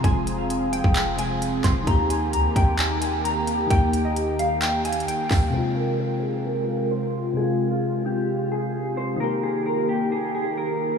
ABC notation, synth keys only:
X:1
M:4/4
L:1/8
Q:1/4=131
K:Fm
V:1 name="Synth keys" clef=bass
[C,A,A]4- [C,A,A] [C,A,A]3 | [E,B,G]8 | [E,B,G]8 | [C,A,F]8 |
[C,A,F]8 | [E,B,G]8 |]